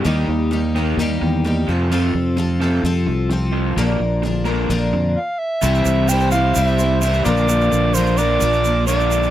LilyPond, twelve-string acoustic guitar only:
\new Staff \with { instrumentName = "Twelve-string acoustic guitar" } { \time 4/4 \key bes \lydian \tempo 4 = 129 <ees g bes ees' g'>4 <g bes ees' g'>8 <bes ees' g'>8 <ees g bes ees' g'>4 <g bes ees' g'>8 <c' f' a'>8 | <f c' f' a'>4 <f c' f' a'>8 <c' f' a'>8 <f c' f' a'>4 <f c' f' a'>4 | <bes, d f bes d' bes'>4 <f bes d' bes'>8 <f bes d' bes'>8 <bes, d f bes d' bes'>4 r4 | <c g c' e' c''>4 <g c' e' c''>8 <c' e' c''>8 <g c' e' c''>8 <c' e' c''>8 <g c' e' c''>8 <bes, d f bes d' bes'>8~ |
<bes, d f bes d' bes'>4 <f bes d' bes'>8 <f bes d' bes'>8 <f bes d' bes'>8 <f bes d' bes'>8 <f bes d' bes'>4 | }